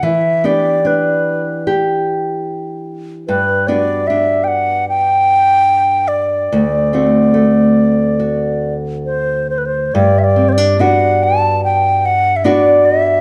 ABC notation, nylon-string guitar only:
X:1
M:4/4
L:1/16
Q:1/4=73
K:G
V:1 name="Nylon-string guitar"
E,2 [B,DG]2 D4 G8 | G,,2 [B,DF]2 D12 | D,,2 [A,CF]2 A,4 F8 | G,,2 C D [B,DF]8 [B,DF]4 |]